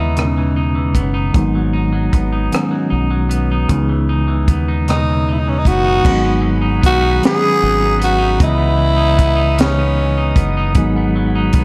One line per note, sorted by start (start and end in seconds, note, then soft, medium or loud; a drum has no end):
0.00 0.97 D#2 medium
0.00 0.15 C#3 medium
0.00 0.16 C#3 medium
0.00 0.36 E3 medium
0.00 1.36 E3 medium
0.00 0.18 G#3 medium
0.00 0.18 B3 medium
0.00 0.94 B3 soft
0.00 0.56 D#4 medium
0.00 0.56 E4 medium
0.00 1.36 D#5 medium
0.16 1.06 B2 medium
0.16 1.42 C#3 medium
0.16 1.05 C#3 medium
0.16 1.06 G#3 medium
0.16 1.06 B3 medium
0.16 0.24 D#4 medium
0.16 cross-stick loud
0.16 closed hi-hat medium
0.26 1.10 C#4 medium
0.37 0.74 E3 medium
0.56 1.13 D#4 medium
0.75 1.42 E3 medium
0.95 1.30 F#1 medium
0.95 2.12 B3 medium
0.95 kick medium
0.95 closed hi-hat medium
1.14 1.73 D#4 medium
1.33 2.09 G#1 medium
1.33 2.51 G#2 medium
1.33 2.23 D#3 medium
1.33 2.23 F#3 medium
1.33 2.24 G#3 medium
1.33 2.24 B3 medium
1.33 2.24 D#4 medium
1.33 kick medium
1.33 closed hi-hat medium
1.55 1.91 F#3 medium
1.73 2.32 D#4 medium
1.93 2.70 F#3 medium
2.13 2.48 G#1 medium
2.13 3.29 B3 soft
2.13 kick medium
2.13 closed hi-hat medium
2.32 2.90 D#4 medium
2.52 3.77 G#2 medium
2.52 3.41 D#3 medium
2.52 3.41 F#3 medium
2.52 3.41 G#3 medium
2.52 3.42 B3 medium
2.52 3.42 C#4 medium
2.52 cross-stick loud
2.52 closed hi-hat medium
2.71 3.09 F#3 medium
2.90 3.66 B1 medium
2.90 3.51 D#4 medium
3.11 3.77 F#3 medium
3.29 4.48 B3 medium
3.29 closed hi-hat medium
3.51 3.92 D#4 medium
3.69 4.49 C#2 medium
3.69 4.87 C#3 medium
3.69 4.58 C#3 medium
3.69 4.59 E3 medium
3.69 4.59 G#3 medium
3.69 4.59 B3 medium
3.69 kick medium
3.69 closed hi-hat medium
3.73 4.60 D#4 medium
3.89 4.27 E3 soft
4.09 4.68 D#4 medium
4.28 5.06 E3 medium
4.48 5.67 D#2 loud
4.48 5.66 B3 medium
4.48 kick medium
4.48 closed hi-hat medium
4.68 5.28 D#4 medium
4.88 5.76 B2 medium
4.88 5.76 C#3 medium
4.88 6.13 C#3 medium
4.88 5.77 G#3 medium
4.88 5.77 B3 medium
4.88 5.34 D#4 medium
4.88 5.78 D#4 medium
4.88 cross-stick loud
4.88 closed hi-hat medium
5.09 5.46 E3 medium
5.29 5.84 D#4 medium
5.29 5.40 E4 medium
5.39 5.51 D#4 medium
5.47 6.13 E3 soft
5.47 5.60 C#4 medium
5.59 5.69 D#4 medium
5.65 6.01 F#1 medium
5.65 6.23 B3 soft
5.65 6.45 F#4 loud
5.65 kick medium
5.65 closed hi-hat medium
5.85 6.61 D#4 medium
6.05 6.79 G#1 medium
6.05 7.21 G#2 medium
6.05 6.94 D#3 medium
6.05 6.94 F#3 medium
6.05 6.94 G#3 medium
6.05 6.94 B3 medium
6.05 6.12 C#4 medium
6.05 8.38 G#4 medium
6.05 8.38 F#5 medium
6.05 8.39 B5 medium
6.05 kick loud
6.05 crash medium
6.13 6.98 D#4 medium
6.24 6.81 B3 medium
6.42 7.61 F#3 medium
6.61 7.00 D#4 medium
6.81 7.19 B1 loud
6.81 7.42 B3 medium
6.81 kick medium
6.81 closed hi-hat medium
6.86 7.21 F#4 loud
7.01 7.80 D#4 medium
7.22 8.48 G#2 medium
7.22 8.11 D#3 medium
7.22 8.11 F#3 medium
7.22 8.12 G#3 medium
7.22 8.12 B3 medium
7.22 8.13 C#4 medium
7.22 snare loud
7.22 closed hi-hat medium
7.26 7.99 G#4 loud
7.42 7.99 B3 medium
7.62 8.37 G#1 medium
7.62 8.48 F#3 medium
7.80 8.18 D#4 medium
7.99 8.57 B3 medium
7.99 closed hi-hat medium
8.04 8.39 F#4 loud
8.18 8.80 D#4 medium
8.37 10.33 C#2 loud
8.37 9.56 C#3 medium
8.37 9.29 C#3 medium
8.37 9.29 E3 medium
8.37 10.73 B4 medium
8.37 10.73 D#5 medium
8.37 10.73 D#6 medium
8.37 kick loud
8.37 closed hi-hat medium
8.42 9.30 G#3 medium
8.42 9.30 B3 medium
8.42 9.62 E4 loud
8.42 9.30 D#5 medium
8.58 9.17 B3 medium
8.77 9.96 E3 medium
8.97 9.36 D#4 medium
9.18 9.78 B3 medium
9.18 kick medium
9.18 closed hi-hat medium
9.36 10.17 D#4 medium
9.57 10.83 C#3 medium
9.57 10.47 C#3 medium
9.57 10.47 E3 medium
9.57 10.48 G#3 medium
9.57 10.48 B3 medium
9.57 10.47 C#4 medium
9.57 10.48 D#4 medium
9.57 snare loud
9.57 closed hi-hat medium
9.78 10.36 B3 medium
9.98 10.84 E3 medium
10.18 10.57 D#4 medium
10.36 10.76 F#1 medium
10.36 10.96 B3 medium
10.36 kick medium
10.36 closed hi-hat medium
10.57 11.35 D#4 medium
10.75 11.50 G#1 loud
10.75 11.64 G#2 medium
10.75 11.64 D#3 medium
10.75 11.64 F#3 medium
10.75 11.64 G#3 medium
10.75 11.64 B3 medium
10.75 11.64 D#4 loud
10.75 11.64 G#4 medium
10.75 11.64 F#5 medium
10.75 11.64 B5 medium
10.75 kick loud
10.75 closed hi-hat medium
10.96 11.55 B3 medium
11.16 11.64 F#3 medium
11.35 11.64 D#4 medium
11.53 11.64 B1 loud
11.53 11.64 B3 medium
11.53 kick medium
11.53 closed hi-hat medium